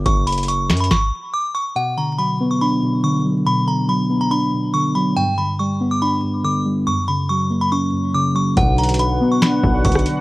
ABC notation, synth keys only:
X:1
M:4/4
L:1/8
Q:1/4=141
K:Bm
V:1 name="Synth keys" clef=bass
z8 | B,, D, F, B, D B,, D, F, | B,, D, F, B, D B,, D, F, | G,, D, G, B, D G,, D, G, |
F,, C, F, ^A, C F,, C, F, | B,, D, F, B, D B,, D, F, |]